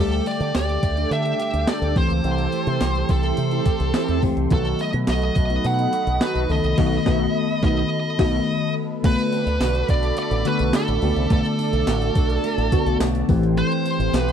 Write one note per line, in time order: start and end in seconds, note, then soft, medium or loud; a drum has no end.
0.00 0.20 D2 loud
0.00 0.78 D3 medium
0.00 0.29 G3 medium
0.00 0.78 G3 medium
0.00 0.26 A3 medium
0.00 0.78 A3 medium
0.00 0.54 G4 medium
0.00 0.78 G4 medium
0.00 0.25 A4 medium
0.00 9.00 A4 medium
0.00 4.47 G5 medium
0.00 1.95 D6 medium
0.13 closed hi-hat soft
0.26 0.82 A3 medium
0.26 0.55 D5 medium
0.26 closed hi-hat medium
0.26 tambourine soft
0.40 0.51 D3 medium
0.40 closed hi-hat medium
0.54 0.76 D2 medium
0.54 1.39 G4 medium
0.54 1.08 D5 medium
0.54 snare loud
0.54 closed hi-hat medium
0.54 tambourine medium
0.69 closed hi-hat soft
0.83 1.04 D2 medium
0.83 2.28 A3 medium
0.83 kick medium
0.83 closed hi-hat medium
0.83 tambourine soft
0.97 1.09 D4 medium
0.97 1.09 A4 medium
0.97 closed hi-hat soft
1.11 1.32 D3 loud
1.11 1.66 D4 medium
1.11 1.69 E5 loud
1.11 closed hi-hat medium
1.11 tambourine soft
1.25 1.38 D4 medium
1.25 1.37 A4 medium
1.25 closed hi-hat soft
1.39 2.25 G4 medium
1.39 closed hi-hat medium
1.39 tambourine soft
1.53 1.64 D2 medium
1.53 closed hi-hat medium
1.67 2.02 D4 medium
1.67 1.92 D4 medium
1.67 1.92 A4 loud
1.67 1.95 D5 loud
1.67 snare loud
1.67 closed hi-hat medium
1.67 tambourine medium
1.82 1.93 D2 medium
1.82 closed hi-hat soft
1.96 2.07 C2 medium
1.96 2.87 E3 medium
1.96 2.23 E3 medium
1.96 2.87 A3 medium
1.96 2.87 C4 medium
1.96 2.87 G4 medium
1.96 3.11 C5 loud
1.96 4.48 C6 medium
1.96 kick loud
1.96 open hi-hat medium
1.96 tambourine soft
2.10 2.21 C#2 medium
2.10 closed hi-hat soft
2.24 2.46 C2 loud
2.24 4.51 E3 medium
2.24 2.80 G4 medium
2.24 closed hi-hat medium
2.38 closed hi-hat soft
2.52 3.09 A3 medium
2.52 closed hi-hat medium
2.52 tambourine soft
2.67 2.78 C3 medium
2.67 closed hi-hat medium
2.81 3.02 C2 medium
2.81 3.65 G4 medium
2.81 snare loud
2.81 closed hi-hat medium
2.81 tambourine medium
2.95 closed hi-hat soft
3.09 3.31 C2 medium
3.09 4.23 A3 medium
3.09 4.20 A4 medium
3.09 kick medium
3.09 closed hi-hat medium
3.09 tambourine soft
3.23 3.36 C4 medium
3.23 3.36 E4 medium
3.23 3.36 G4 medium
3.23 closed hi-hat soft
3.37 3.59 C3 loud
3.37 3.93 C4 medium
3.37 closed hi-hat medium
3.37 tambourine soft
3.51 3.64 C4 medium
3.51 3.64 E4 medium
3.51 3.64 G4 loud
3.51 closed hi-hat soft
3.66 4.51 G4 medium
3.66 kick medium
3.66 closed hi-hat medium
3.66 tambourine soft
3.80 3.91 C2 medium
3.80 closed hi-hat medium
3.94 4.19 C4 loud
3.94 4.57 C4 medium
3.94 4.19 E4 loud
3.94 4.19 G4 loud
3.94 snare loud
3.94 closed hi-hat medium
3.94 tambourine medium
4.08 4.19 E2 medium
4.08 closed hi-hat medium
4.22 4.33 C#2 medium
4.22 4.43 E3 medium
4.22 4.43 A3 medium
4.22 4.80 A3 medium
4.22 4.43 C4 medium
4.22 4.43 G4 medium
4.22 kick medium
4.22 open hi-hat medium
4.22 tambourine soft
4.37 4.47 C2 medium
4.37 closed hi-hat soft
4.50 4.72 B1 loud
4.50 5.30 D#3 medium
4.50 6.78 F#3 medium
4.50 5.30 A3 medium
4.50 5.31 B3 medium
4.50 5.31 F#4 medium
4.50 5.08 F#4 medium
4.50 4.79 A4 medium
4.50 9.00 D#5 medium
4.50 9.00 B5 medium
4.50 kick loud
4.50 closed hi-hat medium
4.50 tambourine soft
4.65 closed hi-hat soft
4.79 5.36 A3 medium
4.79 4.88 D#5 medium
4.79 closed hi-hat medium
4.79 tambourine medium
4.93 5.04 B2 medium
4.93 closed hi-hat medium
5.07 5.29 B1 medium
5.07 5.93 F#4 medium
5.07 5.67 D#5 medium
5.07 snare loud
5.07 closed hi-hat medium
5.07 tambourine medium
5.22 closed hi-hat soft
5.35 5.57 B1 medium
5.35 6.49 A3 medium
5.35 kick medium
5.35 closed hi-hat medium
5.35 tambourine soft
5.50 5.62 B3 medium
5.50 5.62 D#4 medium
5.50 5.62 F#4 medium
5.50 closed hi-hat soft
5.64 5.86 B2 medium
5.64 6.20 D#4 medium
5.64 6.24 F#5 loud
5.64 closed hi-hat medium
5.64 tambourine soft
5.78 5.91 B3 medium
5.78 5.91 D#4 medium
5.78 5.91 F#4 loud
5.78 closed hi-hat soft
5.93 6.78 F#4 medium
5.93 closed hi-hat medium
5.93 tambourine soft
6.07 6.17 B1 medium
6.07 closed hi-hat medium
6.21 6.78 D#4 medium
6.21 6.45 D#4 loud
6.21 6.45 F#4 medium
6.21 6.45 A4 loud
6.21 6.51 B4 loud
6.21 snare loud
6.21 closed hi-hat medium
6.21 tambourine medium
6.35 6.46 B1 medium
6.35 closed hi-hat medium
6.49 6.60 C#2 medium
6.49 6.69 D#3 medium
6.49 6.69 A3 medium
6.49 7.48 A3 medium
6.49 6.70 B3 medium
6.49 6.70 A4 medium
6.49 7.63 D#5 loud
6.49 open hi-hat medium
6.49 tambourine soft
6.64 6.74 C2 medium
6.64 closed hi-hat soft
6.77 6.97 B1 loud
6.77 6.97 D#3 medium
6.77 6.97 F#3 loud
6.77 6.97 A3 loud
6.77 6.97 B3 medium
6.77 6.97 D#4 loud
6.77 6.97 F#4 loud
6.77 6.98 F#4 loud
6.77 6.98 F#4 medium
6.77 6.97 A4 loud
6.77 kick loud
6.77 snare loud
6.77 crash medium
7.06 7.25 B1 loud
7.06 7.25 D#3 loud
7.06 7.25 A3 loud
7.06 7.25 B3 loud
7.06 7.25 D#4 loud
7.06 7.25 F#4 loud
7.06 7.26 F#4 medium
7.06 7.25 A4 loud
7.06 kick loud
7.06 snare loud
7.62 7.82 B1 loud
7.62 7.82 D#3 medium
7.62 7.82 A3 medium
7.62 7.82 B3 medium
7.62 7.82 D#4 loud
7.62 7.82 F#4 loud
7.62 7.82 F#4 medium
7.62 7.82 A4 loud
7.62 8.73 D#5 medium
7.62 kick loud
7.62 snare loud
8.19 8.39 B1 loud
8.19 8.38 D#3 loud
8.19 8.38 A3 loud
8.19 8.39 B3 loud
8.19 8.38 D#4 loud
8.19 8.39 F#4 loud
8.19 8.38 A4 loud
8.19 kick loud
8.19 snare loud
8.19 crash medium
9.03 9.15 B1 loud
9.03 9.83 D3 medium
9.03 9.83 A3 medium
9.03 10.17 A3 medium
9.03 9.83 B3 medium
9.03 9.84 F#4 medium
9.03 13.25 A4 medium
9.03 9.86 B4 loud
9.03 13.25 D5 medium
9.03 11.29 B5 medium
9.03 kick loud
9.03 closed hi-hat medium
9.03 crash loud
9.19 closed hi-hat medium
9.32 9.47 C4 medium
9.32 closed hi-hat medium
9.32 tambourine medium
9.46 9.57 D2 medium
9.46 9.88 D4 medium
9.46 closed hi-hat medium
9.60 9.82 B1 medium
9.60 10.44 F#4 medium
9.60 snare loud
9.60 closed hi-hat medium
9.60 tambourine medium
9.75 closed hi-hat soft
9.88 10.10 B1 medium
9.88 10.72 D4 medium
9.88 10.18 D5 loud
9.88 kick medium
9.88 closed hi-hat medium
9.88 tambourine medium
10.03 closed hi-hat medium
10.17 11.02 A3 medium
10.17 10.47 D5 loud
10.17 closed hi-hat loud
10.17 tambourine soft
10.31 10.42 A1 loud
10.31 closed hi-hat medium
10.45 10.85 D3 medium
10.45 10.85 A3 medium
10.45 10.85 B3 medium
10.45 11.86 F#4 medium
10.45 10.86 F#4 medium
10.45 10.76 B4 medium
10.45 closed hi-hat medium
10.45 tambourine soft
10.59 10.70 B1 medium
10.59 closed hi-hat medium
10.73 11.57 D4 medium
10.73 11.28 A4 medium
10.73 snare loud
10.73 closed hi-hat loud
10.73 tambourine medium
10.88 10.99 A1 loud
10.88 closed hi-hat medium
11.02 11.13 C#2 medium
11.02 11.22 D3 medium
11.02 11.30 A3 medium
11.02 11.22 A3 medium
11.02 11.22 B3 medium
11.02 11.23 F#4 medium
11.02 open hi-hat medium
11.02 tambourine soft
11.16 11.27 C2 medium
11.16 closed hi-hat soft
11.30 11.41 B1 loud
11.30 12.10 D3 medium
11.30 12.43 A3 medium
11.30 12.10 A3 medium
11.30 12.10 B3 medium
11.30 12.10 F#4 medium
11.30 12.97 A4 medium
11.30 13.27 A5 medium
11.30 kick loud
11.30 closed hi-hat medium
11.30 tambourine soft
11.45 closed hi-hat medium
11.59 12.14 D4 medium
11.59 closed hi-hat medium
11.59 tambourine medium
11.73 11.83 B1 medium
11.73 closed hi-hat medium
11.87 12.08 A1 medium
11.87 12.71 F#4 medium
11.87 snare loud
11.87 closed hi-hat medium
11.87 tambourine medium
12.02 closed hi-hat soft
12.15 12.37 B1 loud
12.15 12.99 D4 medium
12.15 kick medium
12.15 closed hi-hat medium
12.15 tambourine soft
12.30 closed hi-hat medium
12.44 14.16 A3 medium
12.44 closed hi-hat medium
12.44 tambourine soft
12.58 12.68 A1 medium
12.58 closed hi-hat medium
12.72 13.12 D3 medium
12.72 13.12 A3 medium
12.72 13.12 B3 medium
12.72 13.34 F#4 medium
12.72 13.12 F#4 loud
12.72 kick medium
12.72 closed hi-hat medium
12.72 tambourine soft
12.86 12.97 B1 medium
12.86 closed hi-hat medium
13.00 13.21 B1 loud
13.00 13.34 D4 medium
13.00 snare loud
13.00 closed hi-hat loud
13.00 tambourine medium
13.15 closed hi-hat medium
13.28 13.61 A1 loud
13.28 14.19 E3 medium
13.28 13.57 E3 medium
13.28 14.19 A3 medium
13.28 14.20 C4 medium
13.28 14.20 G4 loud
13.28 14.32 A4 medium
13.28 14.32 G5 medium
13.28 14.32 C6 medium
13.28 kick loud
13.28 open hi-hat medium
13.28 tambourine soft
13.43 closed hi-hat soft
13.57 14.32 E3 medium
13.57 14.17 C5 loud
13.57 closed hi-hat medium
13.72 closed hi-hat soft
13.85 14.32 C4 medium
13.85 closed hi-hat medium
13.85 tambourine medium
13.99 14.10 A1 medium
13.99 closed hi-hat medium
14.13 14.32 B1 medium
14.13 14.32 G4 medium
14.13 14.32 B4 loud
14.13 snare loud
14.13 closed hi-hat medium
14.13 tambourine medium
14.29 closed hi-hat soft